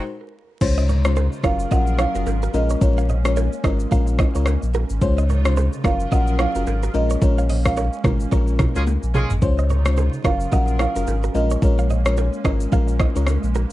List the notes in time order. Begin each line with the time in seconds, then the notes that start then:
0.61 C#2 C3 C#3 G#3 C#4 D#4 F4 C5 C#5, kick, crash, low conga, shaker
0.78 C5 D#5, shaker
0.89 A#4 C#5, low conga, shaker
1.05 G#3 C#4 F4 C5, cross-stick, shaker
1.16 G#4 C5, high bongo, shaker
1.32 shaker
1.43 F#1 F#3 C#4 F4 G#4 A#4 C#5 F5, kick, cross-stick, low bongo, shaker
1.59 shaker
1.71 A#1 F#3 C#4 F4 A#4 D#5 F#5, kick, low conga, shaker
1.87 shaker
1.99 A#4 C#5 F5, cross-stick, low bongo, shaker
2.14 F#1 F#3 C#4 F4 F#4 A#4, shaker
2.26 G#1, high bongo, shaker
2.42 F#4 A#4, shaker
2.54 A#1 G#3 A#3 C#4 F4 A#4 D#5, high bongo, shaker
2.70 A#4 C#5, shaker
2.81 A#1 G#3 C#4 F4 A#4 C#5, kick, low conga, shaker
2.98 C#5 F5, shaker
3.09 C5 D#5, low conga, shaker
3.25 G#3 C#4 F4 A#4 C#5, cross-stick, shaker
3.36 A#4 C#5, high bongo, shaker
3.53 shaker
3.64 G#1 G#3 C#4 F4 A#4 C5 D#5, kick, cross-stick, low bongo, shaker
3.80 shaker
3.91 A#1 G#3 C#4 F4 A#4 C#5 F5, kick, low conga, shaker
4.07 shaker
4.19 C5 D#5, kick, cross-stick, low bongo, shaker
4.35 C#2 G#3 C#4 F4 A#4 C#5, shaker
4.46 cross-stick, high bongo, shaker
4.63 A#1, shaker
4.74 F#4 A#4, high bongo, shaker
4.90 G#1, shaker
5.01 C#2 C3 C#3 G#3 C#4 D#4 F4 C5 C#5, kick, low conga, shaker
5.18 C5 D#5, shaker
5.29 A#4 C#5, low conga, shaker
5.45 G#3 C#4 F4 C5, cross-stick, shaker
5.57 G#4 C5, high bongo, shaker
5.73 shaker
5.84 F#1 F#3 C#4 F4 G#4 A#4 C#5 F5, kick, cross-stick, low bongo, shaker
6.00 shaker
6.11 A#1 F#3 C#4 F4 A#4 D#5 F#5, kick, low conga, shaker
6.27 shaker
6.39 A#4 C#5 F5, cross-stick, low bongo, shaker
6.55 F#1 F#3 C#4 F4 F#4 A#4, shaker
6.67 G#1, high bongo, shaker
6.83 F#4 A#4, shaker
6.94 A#1 G#3 A#3 C#4 F4 A#4 D#5, high bongo, shaker
7.10 A#4 C#5, shaker
7.21 A#1 G#3 C#4 F4 A#4 C#5, kick, low conga, shaker
7.38 C#5 F5, shaker
7.49 C5 D#5, open hi-hat, low conga, shaker
7.65 G#3 C#4 F4 A#4 F5, kick, cross-stick, shaker
7.77 A#4 C#5, high bongo, shaker
7.93 shaker
8.04 G#1 G#3 C#4 F4 F#4 A#4, kick, cross-stick, mid tom, high bongo, low bongo, shaker
8.20 shaker
8.31 A#1 G#3 C#4 F4 A#4 C#5, kick, low conga, shaker
8.47 shaker
8.59 F#4 A#4, kick, cross-stick, mid tom, low bongo, shaker
8.75 C#2 G#3 C#4 F4 F#4 G#4 A#4, shaker
8.87 high tom, high bongo, shaker
9.03 A#1, shaker
9.14 G#3 C#4 F4 G#4, mid tom, high bongo, shaker
9.30 G#1, floor tom, shaker
9.42 C#2 C3 C#3 G#3 C#4 D#4 F4 C5 C#5, kick, low conga, shaker
9.58 C5 D#5, shaker
9.70 A#4 C#5, low conga, shaker
9.85 G#3 C#4 F4 C5, cross-stick, shaker
9.97 G#4 C5, high bongo, shaker
10.13 shaker
10.24 F#1 F#3 C#4 F4 G#4 A#4 C#5 F5, kick, cross-stick, low bongo, shaker
10.40 shaker
10.52 A#1 F#3 C#4 F4 A#4 D#5 F#5, kick, low conga, shaker
10.68 shaker
10.79 A#4 C#5 F5, cross-stick, low bongo, shaker
10.95 F#1 F#3 C#4 F4 F#4 A#4, shaker
11.07 G#1, high bongo, shaker
11.23 F#4 A#4, shaker
11.34 A#1 G#3 A#3 C#4 F4 A#4 D#5, high bongo, shaker
11.50 A#4 C#5, shaker
11.62 A#1 G#3 C#4 F4 A#4 C#5, kick, low conga, shaker
11.79 C#5 F5, shaker
11.90 C5 D#5, low conga, shaker
12.05 G#3 C#4 F4 A#4 C#5, cross-stick, shaker
12.17 A#4 C#5, high bongo, shaker
12.33 shaker
12.44 G#1 G#3 C#4 F4 A#4 C5 D#5, kick, cross-stick, low bongo, shaker
12.60 shaker
12.72 A#1 G#3 C#4 F4 A#4 C#5 F5, kick, low conga, shaker
12.88 shaker
12.99 C5 D#5, kick, cross-stick, low bongo, shaker
13.15 C#2 G#3 C#4 F4 A#4 C#5, shaker
13.27 cross-stick, high bongo, shaker
13.43 A#1, shaker
13.55 F#4 A#4, high bongo, shaker